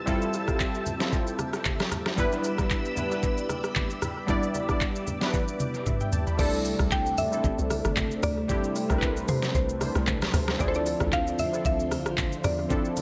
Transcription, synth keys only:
Already playing: G3 C4 E4 F4 B4 C5
0.06 G3 C4 E4 F4 A4
0.47 G3 C4 E4 F4 G4
0.56 A4
0.99 G3 C4 E4 F4 A4
2.16 G3 B3 D4 E4 B4
2.95 G3 B3 D4 E4 B4
3.10 G3 B3 D4 E4 B4
4.27 G3 B3 D4 E4 D5
4.67 G3 B3 D4 E4 D5
5.20 G3 B3 D4 E4 B4
5.86 E5
6.01 E5 G5
6.12 A5
6.27 G5 B5
6.37 G3 C4 D4 E4 A4
7.31 G3 C4 D4 E4 A4
8.48 G3 C4 D4 E4 G4
8.89 G3 C4 D4 E4 A#4
8.98 B4
9.79 G3 C4 D4 E4 C5
10.58 F3 C4 D4 E4 G#4
10.68 A4
11.52 F3 C4 D4 E4 A4
12.69 F3 C4 D4 E4 A4

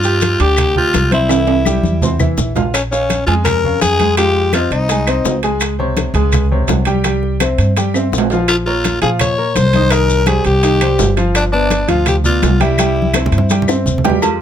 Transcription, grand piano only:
0.04 G4 G5 G6
0.40 D4 D5 D6
0.77 G4 G5 G6
1.11 C4 C5 C6
1.29 E3 E4 E5
1.66 G3 G4 G5
2.03 C4 C5 C6
2.20 E3 E4 E5
2.56 F4 F5 F6
2.92 C#4 C#5 F5
3.27 G#3 G#4 G#5
3.64 C#4 C#5 F5
4.00 G#3 G#4 G#5
4.19 G#3 F4 F5
4.54 C4 C5 D#5
4.90 G#3 G#4 G#5
5.07 C4 C5 D#5
5.44 G#3 G#4 G#5
5.79 C3 C5 C#5
6.15 G#3 G#4 G#5
6.51 C3 C5 C#5
6.86 G3 G4 G5
7.05 G3 G4 G5
7.40 C4 C5 E5
7.77 G3 G4 G5
7.95 C4 C5 E5
8.32 F3 F4 F5
8.66 A#3 A#4 C#5
9.02 F3 F4 F5
9.38 A#3 A#4 C#5
9.75 D#3 D#4 D#5
9.91 D#3 D#4 D#5
10.26 G3 G4 C5
10.63 D#3 D#4 D#5
10.81 G3 G4 C5
11.17 F3 F4 F5
11.52 B3 B4 D5
11.88 F3 F4 F5
12.24 B3 B4 D5
12.60 G3 G4 G5
12.79 G3 G4 G5
13.16 C4 C5 E5
13.50 G3 G4 G5
13.68 C4 C5 E5
14.04 G3 G4 G5
14.22 G#3 F4 G4

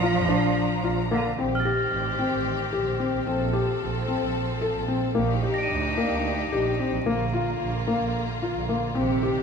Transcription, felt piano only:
0.02 F4
0.29 D4
0.84 F4
1.11 A#3
1.39 C4
1.65 G4
2.19 C4
2.73 G4
3.00 C4
3.27 C4
3.53 G4
4.08 C4
4.61 A4
4.88 C4
5.15 A#3
5.43 G4
5.98 A#3
6.53 G4
6.79 C4
7.06 A#3
7.34 F4
7.87 A#3
8.42 F4
8.69 A#3
8.95 C4
9.23 G4

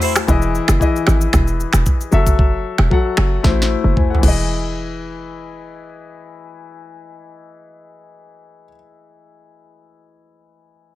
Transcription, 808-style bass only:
0.28 E1
0.69 F#1
1.07 G#1
1.34 E1
1.74 E1
2.13 F#1
2.79 E1
3.18 F#1
3.44 A1
3.84 F#1
4.23 E1

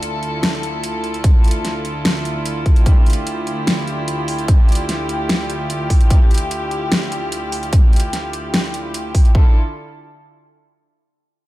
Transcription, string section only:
Already playing: D2 D3 E4 F4 A4
2.86 G4
9.35 D3 D4 E4 F4 A4

